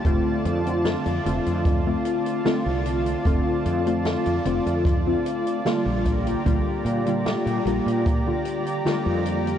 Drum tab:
HH |x-xxxxxxx-xxx-xx|x-xxxxxxx-xxx-xx|x-xxxxxxx-xxx-xx|
SD |----o-------o---|----o-------o---|----o-------o---|
BD |o-------o-------|o-------o-----o-|o-------o-------|